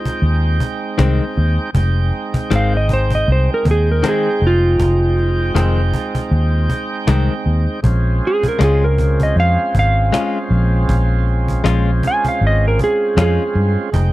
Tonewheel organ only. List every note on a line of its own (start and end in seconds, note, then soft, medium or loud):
0.00 1.70 G#3 medium
0.00 1.70 C4 medium
0.00 1.71 D#4 medium
0.00 1.71 G5 medium
1.74 7.80 G#3 medium
1.74 7.80 C4 medium
1.74 7.80 D#4 medium
1.74 7.81 G5 medium
7.83 13.89 G#3 medium
7.83 13.90 C4 medium
7.83 13.90 C#4 medium
7.83 13.90 F4 medium
13.92 14.13 G#3 medium
13.92 14.13 C4 medium
13.92 14.13 D#4 medium
13.92 14.13 G5 medium